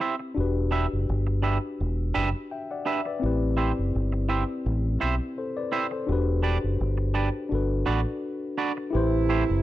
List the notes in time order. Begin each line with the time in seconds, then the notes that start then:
Already playing: C4 E4 G4 B4
0.00 E4 G4 C5 E5
0.19 muted clean electric guitar stroke
0.35 E1 D4 F#4 G4
0.41 B4
0.71 D4 G4 B4 E5
0.93 F#1
1.09 G1
1.27 muted clean electric guitar stroke
1.42 D4 G4 B4 E5
1.80 E1
2.14 F#1 D4 G4 B4 E5
2.51 E5 G5
2.71 D5 F#5
2.85 D4 G4 B4 E5
3.05 B4 D5, muted clean electric guitar stroke
3.20 A1 C4 E4
3.24 G4 B4
3.57 E4 G4 C5 E5
3.79 F#1
3.95 G1
4.12 muted clean electric guitar stroke
4.29 E4 G4 C5 E5
4.66 A1
5.00 B1 E4 G4 C5 E5
5.38 A4 C5
5.57 B4 D5
5.72 E4 G4 C5 E5
5.91 A4 C5, muted clean electric guitar stroke
6.07 E1 D4 F#4 G4
6.12 B4
6.43 D4 G4 B4 D5
6.64 F#1
6.80 G1
6.98 muted clean electric guitar stroke
7.14 D4 G4 B4 D5
7.49 G1 D4 F#4 A4
7.55 B4
7.86 A1 D4 F#4 B4 D5
8.58 D4 F#4 B4 D5
8.77 muted clean electric guitar stroke
8.91 C3 A3 E4 G4 B4
8.95 A1 C5
9.29 A3 E4 G4 C5
9.49 F#1